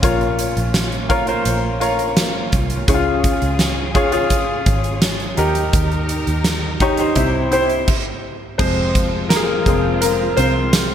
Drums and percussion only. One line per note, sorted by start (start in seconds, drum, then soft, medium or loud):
0.03 kick medium
0.03 closed hi-hat medium
0.21 closed hi-hat soft
0.39 closed hi-hat medium
0.57 closed hi-hat soft
0.74 snare loud
0.74 closed hi-hat medium
0.92 closed hi-hat soft
1.10 kick medium
1.10 closed hi-hat soft
1.27 closed hi-hat medium
1.45 closed hi-hat medium
1.81 closed hi-hat medium
1.99 closed hi-hat soft
2.17 snare loud
2.17 closed hi-hat medium
2.52 kick medium
2.52 closed hi-hat medium
2.70 closed hi-hat medium
2.88 kick loud
2.88 closed hi-hat medium
3.24 kick medium
3.24 closed hi-hat medium
3.42 closed hi-hat soft
3.59 snare medium
3.59 closed hi-hat medium
3.95 kick medium
3.95 closed hi-hat medium
4.12 closed hi-hat medium
4.30 kick medium
4.30 closed hi-hat medium
4.66 kick medium
4.66 closed hi-hat medium
4.84 closed hi-hat soft
5.02 snare loud
5.02 closed hi-hat medium
5.20 closed hi-hat soft
5.37 closed hi-hat medium
5.55 closed hi-hat medium
5.73 kick loud
5.73 closed hi-hat medium
5.91 closed hi-hat soft
6.09 closed hi-hat medium
6.27 closed hi-hat soft
6.44 snare loud
6.44 closed hi-hat medium
6.80 kick medium
6.80 closed hi-hat medium
6.97 closed hi-hat medium
7.15 kick medium
7.15 closed hi-hat medium
7.52 closed hi-hat medium
7.70 closed hi-hat soft
7.88 kick medium
7.88 crash medium
8.59 kick loud
8.59 crash medium
8.95 kick medium
8.95 closed hi-hat medium
9.30 snare loud
9.30 closed hi-hat medium
9.66 kick medium
9.66 closed hi-hat soft
10.02 closed hi-hat loud
10.37 closed hi-hat medium
10.73 snare loud
10.73 closed hi-hat medium